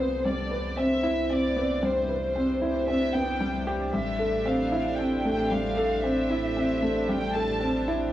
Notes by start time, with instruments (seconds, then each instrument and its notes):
Already playing: detuned saw bass C2, string section A3 C4 D4 A4, felt piano C4, violin section C5
0.00 felt piano B3, string section C5
0.09 string section G4
0.24 felt piano G3, violin section D5
0.51 felt piano B4
0.77 felt piano C4, violin section E5
1.03 felt piano E4
1.30 felt piano C4, violin section D5
1.56 felt piano B3
1.83 felt piano G3, violin section C5
2.09 felt piano B4
2.36 felt piano C4
2.62 felt piano E4
2.88 felt piano C4, violin section E5
3.14 felt piano B3, violin section G5
3.40 felt piano G3
3.67 felt piano G4
3.93 detuned saw bass A1, felt piano G3, violin section E5
4.19 felt piano A4
4.45 felt piano C4, violin section F5
4.72 felt piano E4
4.98 felt piano C4, violin section G5
5.25 felt piano A3
5.50 felt piano G3, violin section F5
5.77 felt piano A4
6.02 felt piano C4, violin section E5
6.30 felt piano E4
6.57 felt piano C4
6.82 felt piano A3
7.08 felt piano G3, violin section G5
7.35 felt piano A4, violin section A5
7.60 felt piano C4
7.88 felt piano E4